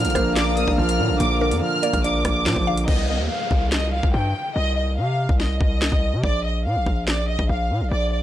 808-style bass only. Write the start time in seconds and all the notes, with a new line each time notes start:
0.05 A#1
0.15 A#1
0.68 A#1
0.78 A#1
0.99 A#2
1.10 A#1
1.20 A#1
1.52 F2
1.94 A#1
2.25 A#1
2.46 A#2
2.56 A#1
2.88 C2
3.19 D#2
3.51 C2
4.03 C2
4.14 G2
4.56 C2
4.98 C3
5.29 C2
5.61 C2
5.92 C2
6.13 C3
6.24 A#1
6.66 A#2
6.76 A#1
6.86 A#1
7.39 A#1
7.49 A#1
7.70 A#2
7.81 A#1
7.91 A#1